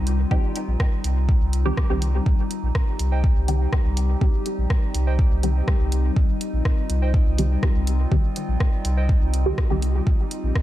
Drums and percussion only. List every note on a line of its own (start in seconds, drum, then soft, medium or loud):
0.07 closed hi-hat medium
0.31 kick loud
0.56 closed hi-hat medium
0.80 kick medium
0.80 cross-stick medium
1.04 closed hi-hat medium
1.29 kick loud
1.53 closed hi-hat medium
1.77 kick loud
1.77 cross-stick medium
2.02 closed hi-hat medium
2.26 kick loud
2.51 closed hi-hat medium
2.75 kick loud
2.75 cross-stick medium
2.99 closed hi-hat medium
3.24 kick loud
3.48 closed hi-hat medium
3.73 kick loud
3.73 cross-stick medium
3.97 closed hi-hat medium
4.21 kick loud
4.46 closed hi-hat medium
4.70 kick loud
4.70 cross-stick medium
4.95 closed hi-hat medium
5.19 kick loud
5.43 closed hi-hat medium
5.68 kick loud
5.68 cross-stick medium
5.92 closed hi-hat medium
6.16 kick loud
6.41 closed hi-hat medium
6.65 kick loud
6.65 cross-stick medium
6.90 closed hi-hat medium
7.14 kick loud
7.38 closed hi-hat medium
7.63 kick loud
7.63 cross-stick medium
7.87 closed hi-hat medium
8.12 kick loud
8.36 closed hi-hat medium
8.60 kick loud
8.60 cross-stick medium
8.85 closed hi-hat medium
9.09 kick loud
9.34 closed hi-hat medium
9.58 kick loud
9.58 cross-stick medium
9.82 closed hi-hat medium
10.07 kick loud
10.31 closed hi-hat medium
10.55 kick loud
10.55 cross-stick medium